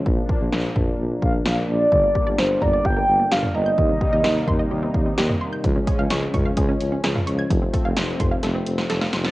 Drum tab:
HH |----------------|----------------|----------------|x-x-x-x-x-x-x-x-|
SD |----o-------o---|----o-------o---|----o-------o---|----o-------o---|
T2 |------o---------|------o------o--|------o------o--|------o------o--|
BD |o-o---o---o-----|o-o---o-o-------|o-o---o---o-----|o-o---o-o-------|

HH |x-x-x-x-x-x-x-x-|
SD |----o---o--ooooo|
T2 |------o---------|
BD |o-o---o---------|